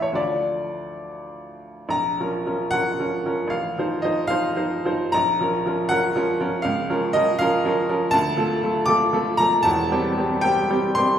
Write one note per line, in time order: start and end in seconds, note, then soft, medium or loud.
0.00 0.16 A1 medium
0.00 0.16 A2 medium
0.00 0.15 E3 soft
0.00 0.15 C#4 soft
0.00 0.15 G4 soft
0.00 0.18 C#5 medium
0.00 0.22 E5 medium
0.00 0.22 F5 loud
0.13 1.86 D2 medium
0.13 1.87 F3 soft
0.13 1.87 D4 soft
0.13 1.88 F4 soft
0.13 1.06 D5 medium
1.89 2.17 A#1 medium
1.89 2.72 A#5 loud
2.20 2.44 F3 medium
2.20 2.45 C#4 medium
2.20 2.45 A#4 medium
2.46 2.70 F3 soft
2.46 2.71 C#4 soft
2.46 2.71 A#4 medium
2.71 2.97 F3 soft
2.71 2.97 C#4 medium
2.71 2.97 A#4 medium
2.71 3.51 F#5 loud
2.99 3.23 F3 medium
2.99 3.23 C#4 medium
2.99 3.24 A#4 medium
3.26 3.49 F3 soft
3.26 3.50 C#4 medium
3.26 3.50 A#4 medium
3.48 3.75 A1 medium
3.48 4.03 F5 medium
3.78 4.02 F3 medium
3.78 4.02 D#4 medium
3.78 4.02 C5 medium
4.02 4.27 F3 soft
4.02 4.27 D#4 medium
4.02 4.27 C5 medium
4.02 4.28 D#5 medium
4.27 4.54 F3 medium
4.27 4.54 D#4 medium
4.27 4.54 C5 medium
4.27 5.14 F5 loud
4.56 4.83 F3 medium
4.56 4.83 D#4 medium
4.56 4.83 C5 medium
4.85 5.12 F3 medium
4.85 5.12 D#4 medium
4.85 5.12 C5 medium
5.12 5.41 A#1 medium
5.12 5.90 A#5 loud
5.41 5.64 F3 medium
5.41 5.64 C#4 medium
5.41 5.64 A#4 medium
5.66 5.89 F3 medium
5.66 5.89 C#4 medium
5.66 5.89 A#4 medium
5.89 6.14 F3 medium
5.89 6.14 C#4 medium
5.89 6.14 A#4 medium
5.89 6.64 F#5 loud
6.16 6.38 F3 medium
6.16 6.39 C#4 medium
6.16 6.39 A#4 medium
6.41 6.63 F3 medium
6.41 6.63 C#4 medium
6.41 6.63 A#4 medium
6.62 6.89 C#2 medium
6.62 7.14 F5 loud
6.90 7.13 F3 medium
6.90 7.13 C#4 medium
6.90 7.13 A#4 medium
7.13 7.38 F3 medium
7.13 7.39 C#4 medium
7.13 7.39 A#4 medium
7.13 7.40 D#5 loud
7.39 7.63 F3 medium
7.39 7.63 C#4 medium
7.39 7.64 A#4 medium
7.39 8.13 F5 loud
7.65 7.87 F3 medium
7.65 7.87 C#4 medium
7.65 7.88 A#4 medium
7.89 8.11 F3 medium
7.89 8.12 C#4 medium
7.89 8.12 A#4 medium
8.11 8.38 D2 medium
8.11 8.87 A5 loud
8.37 8.60 F3 medium
8.37 8.61 A3 medium
8.37 8.61 A4 medium
8.63 8.86 F3 medium
8.63 8.86 A3 medium
8.63 8.87 A4 medium
8.86 9.11 F3 medium
8.86 9.11 A3 medium
8.86 9.11 A4 medium
8.86 9.38 D6 loud
9.13 9.36 F3 medium
9.13 9.37 A3 medium
9.13 9.37 A4 medium
9.37 9.63 F3 medium
9.37 9.63 A3 medium
9.37 9.63 A4 medium
9.37 9.64 A#5 loud
9.63 9.90 E1 medium
9.63 9.90 E2 medium
9.63 10.43 A5 loud
9.92 10.15 G3 medium
9.92 10.16 C4 medium
9.92 10.16 G4 medium
10.17 10.41 G3 medium
10.17 10.41 C4 medium
10.17 10.41 G4 medium
10.41 10.67 G3 medium
10.41 10.67 C4 medium
10.41 10.68 G4 medium
10.41 10.95 G5 loud
10.69 10.94 G3 medium
10.69 10.94 C4 medium
10.69 10.94 G4 medium
10.95 11.19 G3 medium
10.95 11.19 C4 medium
10.95 11.19 G4 medium
10.95 11.19 C6 loud